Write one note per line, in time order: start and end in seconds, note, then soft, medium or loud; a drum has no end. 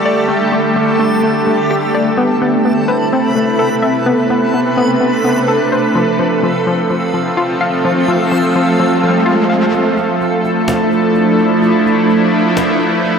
0.00 2.14 D3 medium
0.00 2.14 G3 medium
0.00 0.27 A3 medium
0.00 5.91 A3 medium
0.00 1.23 G4 medium
0.00 2.14 G4 medium
0.00 5.91 A4 medium
0.00 0.27 D5 medium
0.00 2.14 A5 medium
0.06 1.47 D5 medium
0.28 0.51 A3 medium
0.28 5.92 C4 medium
0.52 0.75 A3 medium
0.76 0.98 A3 medium
0.99 1.22 A3 medium
1.24 1.46 A3 medium
1.47 2.18 A3 medium
1.71 2.18 G4 medium
1.95 2.18 D5 medium
2.17 5.92 C3 medium
2.17 2.41 B3 medium
2.17 4.05 E4 medium
2.17 9.70 A4 medium
2.17 5.92 B4 medium
2.17 5.92 B5 medium
2.42 2.64 B3 medium
2.65 4.05 B3 medium
2.88 4.30 B4 medium
3.13 4.54 C4 medium
3.36 4.77 A3 medium
3.59 5.01 A4 medium
3.82 5.24 E5 medium
4.06 4.29 B3 medium
4.06 5.94 D4 medium
4.30 4.53 B3 medium
4.54 4.76 B3 medium
4.77 4.99 B3 medium
5.01 5.23 B3 medium
5.24 5.95 B3 medium
5.48 5.95 A4 medium
5.72 5.96 C5 medium
5.95 6.18 F3 medium
5.95 9.70 F3 medium
5.95 9.70 A3 medium
5.95 9.70 C4 medium
5.95 9.70 F4 medium
5.95 9.70 A4 medium
5.95 9.70 F5 medium
5.95 9.70 E6 medium
5.95 riser medium
6.19 6.42 F3 medium
6.43 6.66 F3 medium
6.67 6.89 F3 medium
6.90 7.13 F3 medium
7.14 7.83 F3 medium
7.37 8.79 F4 medium
7.61 9.03 F5 medium
7.85 8.07 F3 medium
8.08 8.30 F3 medium
8.32 8.54 F3 medium
8.56 8.79 F3 medium
8.80 9.02 F3 medium
9.03 9.74 F3 medium
9.26 9.73 F4 medium
9.50 9.73 F5 medium
9.73 13.19 F3 medium
9.73 13.19 A3 medium
9.73 13.19 D4 medium
9.73 13.19 E4 medium
9.73 11.61 A4 medium
9.73 cajon slap soft
9.97 cajon slap soft
10.21 cajon slap soft
10.44 cajon slap soft
10.68 cajon slap loud
10.91 cajon slap soft
11.15 cajon slap soft
11.39 cajon slap soft
11.62 13.19 B4 medium
11.62 cajon slap soft
11.86 cajon slap soft
12.10 cajon slap soft
12.57 cajon slap loud
12.81 cajon slap soft
13.04 cajon slap soft